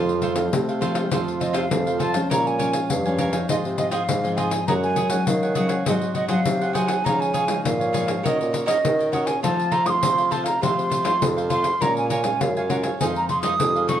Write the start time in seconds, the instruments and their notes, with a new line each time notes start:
Already playing: bassoon F2, nylon-string guitar F2 F3 A3 C4, trombone F3, cavaquinho F4 A4 C5 F5
0.09 pandeiro
0.22 nylon-string guitar F3 A3 C4, cavaquinho F4 A4 C5 F5, pandeiro
0.35 bassoon F2, cavaquinho A4 C5 F5, pandeiro
0.52 bassoon C3, nylon-string guitar C3, trombone A3, pandeiro
0.69 cavaquinho A4 C5 F5, pandeiro
0.81 nylon-string guitar F3 A3 C4, cavaquinho F4 A4 C5 F5, pandeiro
0.94 bassoon C3, cavaquinho A4 C5 F5, pandeiro
1.11 nylon-string guitar F2 F3 A3 C4, trombone F3, bassoon F3, cavaquinho F4 A4 C5 F5, pandeiro
1.28 pandeiro
1.40 cavaquinho F4 A4 C5 F5, flute D#5, pandeiro
1.53 bassoon C3, cavaquinho F4 A4 C5 F5, flute F5, pandeiro
1.71 bassoon F2, nylon-string guitar C3 F3 A3 C4, trombone F3, pandeiro
1.86 cavaquinho A4 C5 F5, pandeiro
1.99 cavaquinho F4 A4 C5 F5, flute A5, pandeiro
2.13 nylon-string guitar F3 G#3 C#4, cavaquinho A4 C5 F5, pandeiro
2.30 bassoon A#2, nylon-string guitar A#2, cavaquinho A#4 C#5 F5 G#5, flute A#5, pandeiro
2.47 flute G#5, pandeiro
2.59 nylon-string guitar F3 G#3 C#4, cavaquinho A#4 C#5 F5 G#5, pandeiro
2.73 cavaquinho C#5 F5 G#5, pandeiro
2.90 nylon-string guitar F2, bassoon G2, flute F5, pandeiro
3.06 nylon-string guitar F3 G#3 C#4, cavaquinho C#5 F5 G#5, pandeiro
3.18 cavaquinho A#4 C#5 F5 G#5, pandeiro
3.32 nylon-string guitar F3 C4 D#4, cavaquinho C#5 F5 G#5, pandeiro
3.49 bassoon G#2, nylon-string guitar G#2, cavaquinho F4 G#4 C5 D#5, flute D#5, pandeiro
3.65 bassoon C3, pandeiro
3.77 nylon-string guitar F3 C4 D#4, cavaquinho F4 G#4 C5 D#5, flute D#5, pandeiro
3.91 cavaquinho F4 G#4 C5 D#5, flute F5 G5, pandeiro
4.08 nylon-string guitar G#2, bassoon G#2, pandeiro
4.24 nylon-string guitar F3 C4 D#4, cavaquinho G#4 C5 D#5, pandeiro
4.37 cavaquinho F4 G#4 C5 D#5, flute G#5, pandeiro
4.50 cavaquinho G#4 C5 D#5, pandeiro
4.67 bassoon F#2, nylon-string guitar F#2 F#3 G#3 C#4, cavaquinho F#4 G#4 C#5 F#5, flute A#5, pandeiro
4.83 flute G#5, pandeiro
4.96 cavaquinho F#4 G#4 C#5 F#5, pandeiro
5.10 nylon-string guitar F#3 G#3 C#4, cavaquinho G#4 C#5 F#5, pandeiro
5.26 nylon-string guitar C#3, bassoon D#3, flute F5, pandeiro
5.43 cavaquinho G#4 C#5 F#5, pandeiro
5.55 nylon-string guitar F#3 G#3 C#4, cavaquinho F#4 G#4 C#5 F#5, pandeiro
5.68 cavaquinho G#4 C#5 F#5, pandeiro
5.86 bassoon G#2, nylon-string guitar G#2 F#3 C4 D#4, cavaquinho F#4 G#4 C5 F#5, flute D#5 F5, pandeiro
6.02 pandeiro
6.14 cavaquinho F#4 G#4 C5 F#5, flute D#5, pandeiro
6.28 nylon-string guitar F#3 C4 D#4, cavaquinho F#4 G#4 C5 F#5, flute F5, pandeiro
6.46 bassoon C3, nylon-string guitar D#3, pandeiro
6.61 cavaquinho G#4 C5 F#5, pandeiro
6.73 nylon-string guitar F#3 C4 D#4, cavaquinho F#4 G#4 C5 F#5, flute G#5, pandeiro
6.87 cavaquinho G#4 C5 F#5, pandeiro
7.05 bassoon C#3, nylon-string guitar C#3 F3 G#3 D#4, cavaquinho D#4 G#4 C#5 F5, flute A#5, pandeiro
7.21 flute G#5, pandeiro
7.33 cavaquinho D#4 G#4 C#5 F5, pandeiro
7.47 nylon-string guitar F3 G#3 D#4, cavaquinho G#4 C#5 F5, pandeiro
7.65 nylon-string guitar G#2, bassoon A#2, flute F5, pandeiro
7.79 cavaquinho G#4 C#5 F5, pandeiro
7.93 nylon-string guitar F3 G#3 D#4, cavaquinho D#4 G#4 C#5 F5, pandeiro
8.06 cavaquinho G#4 C#5 F5, pandeiro
8.23 nylon-string guitar D#3 A#3 C#4 F#4, bassoon D#3, cavaquinho F#4 A#4 C#5 D#5, flute F5, pandeiro
8.29 flute D#5
8.41 bassoon A#2, pandeiro
8.52 cavaquinho F#4 A#4 C#5 D#5, pandeiro
8.66 nylon-string guitar A#3 C#4 F#4, cavaquinho F#4 A#4 C#5 D#5, flute D#5, pandeiro
8.84 nylon-string guitar A#2, bassoon D#3, pandeiro
8.99 cavaquinho A#4 C#5 D#5, pandeiro
9.12 nylon-string guitar A#3 C#4 F#4, cavaquinho F#4 A#4 C#5 D#5, flute F#5, pandeiro
9.26 cavaquinho A#4 C#5 D#5, flute G#5, pandeiro
9.43 nylon-string guitar F3 A3 C4 F4, bassoon F3, cavaquinho F4 A4 C5 F5, flute A5, pandeiro
9.60 pandeiro
9.71 cavaquinho F4 A4 C5 F5, flute A#5, pandeiro
9.85 nylon-string guitar A3 C4 F4, cavaquinho A4 C5 F5, flute D#6, pandeiro
9.90 flute C6
10.03 nylon-string guitar C3, bassoon F3, pandeiro
10.17 cavaquinho A4 C5 F5, pandeiro
10.31 nylon-string guitar A3 C4 F4, cavaquinho F4 A4 C5 F5, flute A5, pandeiro
10.44 cavaquinho A4 C5 F5, flute A#5, pandeiro
10.61 bassoon C3, nylon-string guitar F3 A3 C4 F4, cavaquinho F4 A4 C5 F5, flute C6, pandeiro
10.78 bassoon C3, pandeiro
10.90 cavaquinho F4 A4 C5 F5, pandeiro
11.04 nylon-string guitar A3 C4 F4, cavaquinho F4 A4 C5 F5, pandeiro
11.21 bassoon F2, nylon-string guitar C3, pandeiro
11.37 cavaquinho A4 C5 F5, pandeiro
11.50 nylon-string guitar A3 C4 F4, cavaquinho F4 A4 C5 F5, flute C6, pandeiro
11.63 cavaquinho A4 C5 F5, pandeiro
11.81 nylon-string guitar A#2 G#3 C#4 F4, bassoon A#2, cavaquinho A#4 C#5 F5 G#5, flute A#5, pandeiro
11.97 flute G#5, pandeiro
12.10 cavaquinho A#4 C#5 F5 G#5, flute G#5, pandeiro
12.23 nylon-string guitar G#3 C#4 F4, cavaquinho C#5 F5 G#5, pandeiro
12.41 bassoon F#2, flute F5, pandeiro
12.57 cavaquinho C#5 F5 G#5, flute F5, pandeiro
12.69 nylon-string guitar G#3 C#4 F4, cavaquinho A#4 C#5 F5 G#5, flute F#5, pandeiro
12.83 cavaquinho C#5 F5 G#5, pandeiro
13.00 nylon-string guitar F2 D#3 G#3 C4, bassoon F2, cavaquinho D#4 G#4 C5 F5, flute G#5, pandeiro
13.16 flute A#5, pandeiro
13.29 cavaquinho D#4 G#4 C5 F5, flute C6, pandeiro
13.42 nylon-string guitar D#3 G#3 C4, cavaquinho D#4 G#4 C5 F5, flute D#6, pandeiro
13.59 bassoon F2, nylon-string guitar C3, pandeiro
13.76 cavaquinho G#4 C5 F5, pandeiro
13.88 nylon-string guitar D#3 G#3 C4, cavaquinho D#4 G#4 C5 F5, flute C#6, pandeiro